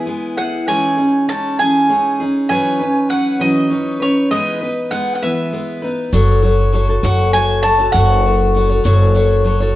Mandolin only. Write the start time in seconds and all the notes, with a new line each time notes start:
Already playing: G#5
0.37 F#5
0.68 G#5
1.29 A5
1.59 G#5
2.49 G#5
3.10 F#5
3.41 D#5
4.02 C#5
4.31 D#5
4.91 F#5
5.15 F#5
5.23 E5
7.05 F#5
7.33 G#5
7.63 A5
7.92 F#5